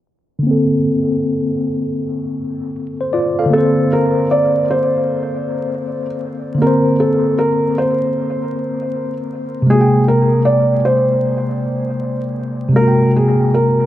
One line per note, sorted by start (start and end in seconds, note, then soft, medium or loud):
0.39 3.45 D3 medium
0.43 3.47 A#3 medium
0.43 3.49 C4 medium
0.51 2.36 A4 medium
3.01 3.13 C5 medium
3.13 3.37 F4 medium
3.13 3.37 D5 medium
3.39 3.76 A4 medium
3.39 3.75 F5 medium
3.46 6.53 D3 medium
3.50 6.55 A#3 medium
3.50 3.91 A4 medium
3.54 6.57 C4 medium
3.54 6.59 C5 medium
3.93 4.26 A#4 medium
4.31 4.65 D5 medium
4.71 6.05 C5 medium
6.55 9.61 D3 medium
6.55 9.63 A#3 medium
6.62 9.65 C4 medium
6.62 6.95 A#4 medium
6.67 9.67 C5 medium
7.00 7.37 A4 medium
7.39 7.76 A#4 medium
7.78 9.13 C5 medium
9.62 12.68 C3 medium
9.67 12.71 G#3 medium
9.67 12.72 A#3 medium
9.67 10.03 G#4 medium
9.74 9.79 F#4 medium
9.81 12.78 G5 medium
10.08 10.42 A#4 medium
10.45 10.79 D5 medium
10.85 12.20 C5 medium
12.69 13.86 C3 medium
12.73 13.86 G#3 medium
12.73 13.10 A#4 medium
12.77 13.86 A#3 medium
12.77 12.87 F#4 medium
12.88 13.86 G5 medium
13.16 13.50 G#4 medium
13.54 13.86 A#4 medium